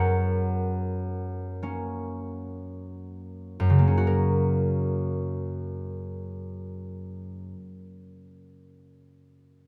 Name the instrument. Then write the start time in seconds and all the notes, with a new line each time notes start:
harp
Already playing: F#2 C#4 A#4 C#5 F#5
1.63 A#3 C#4
3.60 F#2
3.70 C#3
3.79 A#3
3.88 C#4
3.98 F#4
4.07 A#4